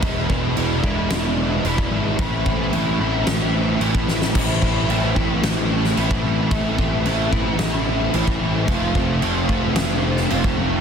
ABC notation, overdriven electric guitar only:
X:1
M:4/4
L:1/8
Q:1/4=111
K:Am
V:1 name="Overdriven electric guitar"
[E,,B,,E,^G,DE]2 [E,G,DE] [E,G,DE] [E,,B,,E,G,DE]2 [E,G,DE]2 | [A,,E,A,CE]2 [E,A,CE] [A,CE] [A,,E,A,CE]2 [E,A,CE]2 | [A,,E,A,CE]2 [E,A,CE] [A,CE] [A,,E,A,CE]2 [E,A,CE]2 | [A,,E,A,CE]2 [E,A,CE] [A,CE] [A,,E,A,CE]2 [E,A,CE]2 |
[F,,C,F,A,CF]2 [F,A,CF] [F,A,CF] [F,,C,F,A,CF]2 [F,A,CF]2 |]